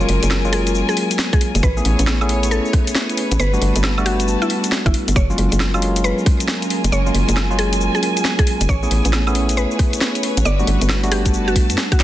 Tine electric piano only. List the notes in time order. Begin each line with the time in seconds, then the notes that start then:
0.01 F#3 G#3 A#3 C#4 F4
0.45 F#3 G#3 A#3 C#4 F4
1.77 A3 B3 C#4 E4 G#4
2.21 A3 B3 C#4 E4 G#4
3.54 G3 A3 B3 D4 F#4
3.98 G3 A3 B3 D4 F#4
5.30 F#3 G#3 A#3 C#4 F4
5.74 F#3 G#3 A#3 C#4 F4
7.06 F#3 G#3 A#3 C#4 F4
7.51 F#3 G#3 A#3 C#4 F4
8.83 A3 B3 C#4 E4 G#4
9.27 A3 B3 C#4 E4 G#4
10.59 G3 A3 B3 D4 F#4
11.04 G3 A3 B3 D4 F#4
12.00 F#3 G#3 A#3 C#4 F4